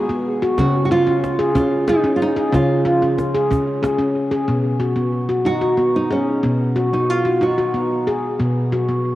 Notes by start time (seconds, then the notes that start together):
Already playing: G#3 G#4
0.09 B3, cajon slap
0.42 F#4
0.58 C#3 C#4 F#4, cajon bass, cajon slap
0.85 F#4
0.91 F4
1.07 C#4
1.24 cajon slap
1.39 G#4
1.55 C#4 F4, cajon bass
1.73 cajon slap
1.88 D#4 G#4, cajon slap
2.04 C#4, cajon slap
2.16 F4
2.22 D#4
2.36 G#4
2.52 C#3 C#4 F4, cajon bass, cajon slap
2.85 F4, cajon slap
3.02 C#4
3.18 cajon slap
3.34 G#4
3.51 C#4, cajon bass
3.68 cajon slap
3.83 G#4, cajon slap
3.99 C#4
4.16 cajon slap
4.31 G#4
4.48 B2 B3
4.80 F#4
4.96 B3
5.29 F#4
5.45 D#4 F#4
5.61 F#4
5.77 B3
5.96 D#4
6.11 C#4 G#4
6.43 B2 B3
6.76 F#4
6.93 B3 D#4
7.10 F4
7.25 F#4
7.41 D#4 F#4
7.58 F#4
7.74 B3
8.07 G#4
8.40 B2 B3
8.72 F#4
8.89 B3